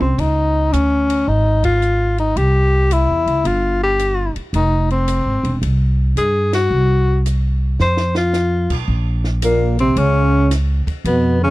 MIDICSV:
0, 0, Header, 1, 6, 480
1, 0, Start_track
1, 0, Key_signature, -4, "minor"
1, 0, Tempo, 543478
1, 163, Time_signature, 4, 2, 24, 8
1, 10159, End_track
2, 0, Start_track
2, 0, Title_t, "Tenor saxophone"
2, 0, Program_c, 0, 66
2, 14, Note_on_c, 0, 60, 60
2, 173, Note_on_c, 0, 63, 81
2, 186, Note_off_c, 0, 60, 0
2, 642, Note_on_c, 0, 61, 64
2, 655, Note_off_c, 0, 63, 0
2, 1132, Note_on_c, 0, 63, 72
2, 1145, Note_off_c, 0, 61, 0
2, 1449, Note_off_c, 0, 63, 0
2, 1455, Note_on_c, 0, 65, 77
2, 1896, Note_off_c, 0, 65, 0
2, 1939, Note_on_c, 0, 63, 74
2, 2097, Note_on_c, 0, 67, 87
2, 2111, Note_off_c, 0, 63, 0
2, 2587, Note_on_c, 0, 64, 71
2, 2600, Note_off_c, 0, 67, 0
2, 3059, Note_on_c, 0, 65, 79
2, 3072, Note_off_c, 0, 64, 0
2, 3372, Note_off_c, 0, 65, 0
2, 3387, Note_on_c, 0, 67, 75
2, 3822, Note_off_c, 0, 67, 0
2, 4020, Note_on_c, 0, 63, 75
2, 4311, Note_off_c, 0, 63, 0
2, 4340, Note_on_c, 0, 60, 61
2, 4934, Note_off_c, 0, 60, 0
2, 5458, Note_on_c, 0, 68, 74
2, 5750, Note_off_c, 0, 68, 0
2, 5778, Note_on_c, 0, 66, 73
2, 6373, Note_off_c, 0, 66, 0
2, 6901, Note_on_c, 0, 72, 80
2, 7192, Note_off_c, 0, 72, 0
2, 7218, Note_on_c, 0, 65, 67
2, 7734, Note_off_c, 0, 65, 0
2, 8339, Note_on_c, 0, 58, 63
2, 8630, Note_off_c, 0, 58, 0
2, 8659, Note_on_c, 0, 60, 81
2, 8820, Note_on_c, 0, 61, 84
2, 8833, Note_off_c, 0, 60, 0
2, 9290, Note_off_c, 0, 61, 0
2, 9775, Note_on_c, 0, 59, 68
2, 10068, Note_off_c, 0, 59, 0
2, 10100, Note_on_c, 0, 61, 84
2, 10159, Note_off_c, 0, 61, 0
2, 10159, End_track
3, 0, Start_track
3, 0, Title_t, "Trombone"
3, 0, Program_c, 1, 57
3, 8330, Note_on_c, 1, 46, 61
3, 8625, Note_off_c, 1, 46, 0
3, 8652, Note_on_c, 1, 48, 61
3, 8809, Note_on_c, 1, 49, 71
3, 8822, Note_off_c, 1, 48, 0
3, 9284, Note_off_c, 1, 49, 0
3, 9771, Note_on_c, 1, 47, 59
3, 10065, Note_off_c, 1, 47, 0
3, 10086, Note_on_c, 1, 49, 72
3, 10159, Note_off_c, 1, 49, 0
3, 10159, End_track
4, 0, Start_track
4, 0, Title_t, "Upright bass"
4, 0, Program_c, 2, 32
4, 4, Note_on_c, 2, 36, 61
4, 151, Note_off_c, 2, 36, 0
4, 164, Note_on_c, 2, 37, 73
4, 609, Note_off_c, 2, 37, 0
4, 645, Note_on_c, 2, 38, 58
4, 1090, Note_off_c, 2, 38, 0
4, 1127, Note_on_c, 2, 32, 70
4, 2048, Note_off_c, 2, 32, 0
4, 2085, Note_on_c, 2, 36, 73
4, 2687, Note_off_c, 2, 36, 0
4, 2726, Note_on_c, 2, 40, 53
4, 2872, Note_off_c, 2, 40, 0
4, 2882, Note_on_c, 2, 37, 66
4, 3030, Note_off_c, 2, 37, 0
4, 3041, Note_on_c, 2, 31, 75
4, 3808, Note_off_c, 2, 31, 0
4, 4000, Note_on_c, 2, 29, 78
4, 4605, Note_off_c, 2, 29, 0
4, 4642, Note_on_c, 2, 32, 49
4, 4790, Note_off_c, 2, 32, 0
4, 4799, Note_on_c, 2, 28, 70
4, 4949, Note_off_c, 2, 28, 0
4, 4960, Note_on_c, 2, 36, 78
4, 5407, Note_off_c, 2, 36, 0
4, 5437, Note_on_c, 2, 43, 62
4, 5885, Note_off_c, 2, 43, 0
4, 5922, Note_on_c, 2, 36, 73
4, 6846, Note_off_c, 2, 36, 0
4, 6884, Note_on_c, 2, 41, 78
4, 7649, Note_off_c, 2, 41, 0
4, 7686, Note_on_c, 2, 35, 56
4, 7832, Note_off_c, 2, 35, 0
4, 7840, Note_on_c, 2, 34, 78
4, 8765, Note_off_c, 2, 34, 0
4, 8798, Note_on_c, 2, 37, 87
4, 9565, Note_off_c, 2, 37, 0
4, 9755, Note_on_c, 2, 41, 84
4, 10159, Note_off_c, 2, 41, 0
4, 10159, End_track
5, 0, Start_track
5, 0, Title_t, "Muted upright bass strokes"
5, 3845, Note_on_c, 9, 29, 33
5, 3933, Note_off_c, 9, 29, 0
5, 9604, Note_on_c, 9, 29, 38
5, 9692, Note_off_c, 9, 29, 0
5, 10159, End_track
6, 0, Start_track
6, 0, Title_t, "Drums"
6, 4, Note_on_c, 9, 48, 62
6, 92, Note_off_c, 9, 48, 0
6, 163, Note_on_c, 9, 36, 68
6, 165, Note_on_c, 9, 51, 58
6, 251, Note_off_c, 9, 36, 0
6, 253, Note_off_c, 9, 51, 0
6, 648, Note_on_c, 9, 44, 54
6, 648, Note_on_c, 9, 51, 53
6, 737, Note_off_c, 9, 44, 0
6, 737, Note_off_c, 9, 51, 0
6, 969, Note_on_c, 9, 51, 63
6, 1057, Note_off_c, 9, 51, 0
6, 1445, Note_on_c, 9, 36, 74
6, 1446, Note_on_c, 9, 51, 64
6, 1534, Note_off_c, 9, 36, 0
6, 1535, Note_off_c, 9, 51, 0
6, 1605, Note_on_c, 9, 44, 48
6, 1693, Note_off_c, 9, 44, 0
6, 1927, Note_on_c, 9, 51, 34
6, 2016, Note_off_c, 9, 51, 0
6, 2089, Note_on_c, 9, 51, 51
6, 2178, Note_off_c, 9, 51, 0
6, 2569, Note_on_c, 9, 44, 52
6, 2569, Note_on_c, 9, 51, 60
6, 2657, Note_off_c, 9, 44, 0
6, 2657, Note_off_c, 9, 51, 0
6, 2892, Note_on_c, 9, 51, 41
6, 2980, Note_off_c, 9, 51, 0
6, 3048, Note_on_c, 9, 51, 54
6, 3137, Note_off_c, 9, 51, 0
6, 3528, Note_on_c, 9, 44, 49
6, 3528, Note_on_c, 9, 51, 50
6, 3617, Note_off_c, 9, 44, 0
6, 3617, Note_off_c, 9, 51, 0
6, 3849, Note_on_c, 9, 51, 39
6, 3938, Note_off_c, 9, 51, 0
6, 4007, Note_on_c, 9, 51, 56
6, 4095, Note_off_c, 9, 51, 0
6, 4332, Note_on_c, 9, 51, 34
6, 4420, Note_off_c, 9, 51, 0
6, 4484, Note_on_c, 9, 44, 47
6, 4484, Note_on_c, 9, 51, 58
6, 4572, Note_off_c, 9, 44, 0
6, 4572, Note_off_c, 9, 51, 0
6, 4810, Note_on_c, 9, 51, 43
6, 4898, Note_off_c, 9, 51, 0
6, 4969, Note_on_c, 9, 51, 57
6, 5058, Note_off_c, 9, 51, 0
6, 5448, Note_on_c, 9, 44, 49
6, 5448, Note_on_c, 9, 51, 50
6, 5536, Note_off_c, 9, 44, 0
6, 5536, Note_off_c, 9, 51, 0
6, 5767, Note_on_c, 9, 38, 58
6, 5769, Note_on_c, 9, 51, 62
6, 5855, Note_off_c, 9, 38, 0
6, 5857, Note_off_c, 9, 51, 0
6, 6409, Note_on_c, 9, 44, 53
6, 6409, Note_on_c, 9, 51, 56
6, 6498, Note_off_c, 9, 44, 0
6, 6498, Note_off_c, 9, 51, 0
6, 6884, Note_on_c, 9, 38, 38
6, 6973, Note_off_c, 9, 38, 0
6, 7040, Note_on_c, 9, 38, 48
6, 7129, Note_off_c, 9, 38, 0
6, 7197, Note_on_c, 9, 38, 62
6, 7285, Note_off_c, 9, 38, 0
6, 7359, Note_on_c, 9, 38, 47
6, 7361, Note_on_c, 9, 44, 58
6, 7448, Note_off_c, 9, 38, 0
6, 7449, Note_off_c, 9, 44, 0
6, 7685, Note_on_c, 9, 49, 62
6, 7686, Note_on_c, 9, 36, 62
6, 7773, Note_off_c, 9, 49, 0
6, 7774, Note_off_c, 9, 36, 0
6, 8163, Note_on_c, 9, 38, 31
6, 8251, Note_off_c, 9, 38, 0
6, 8321, Note_on_c, 9, 44, 61
6, 8321, Note_on_c, 9, 51, 71
6, 8409, Note_off_c, 9, 44, 0
6, 8409, Note_off_c, 9, 51, 0
6, 8645, Note_on_c, 9, 51, 51
6, 8733, Note_off_c, 9, 51, 0
6, 8801, Note_on_c, 9, 51, 63
6, 8889, Note_off_c, 9, 51, 0
6, 9281, Note_on_c, 9, 38, 36
6, 9283, Note_on_c, 9, 44, 50
6, 9283, Note_on_c, 9, 51, 66
6, 9370, Note_off_c, 9, 38, 0
6, 9371, Note_off_c, 9, 44, 0
6, 9371, Note_off_c, 9, 51, 0
6, 9603, Note_on_c, 9, 36, 55
6, 9608, Note_on_c, 9, 51, 43
6, 9691, Note_off_c, 9, 36, 0
6, 9696, Note_off_c, 9, 51, 0
6, 9763, Note_on_c, 9, 51, 62
6, 9851, Note_off_c, 9, 51, 0
6, 10159, End_track
0, 0, End_of_file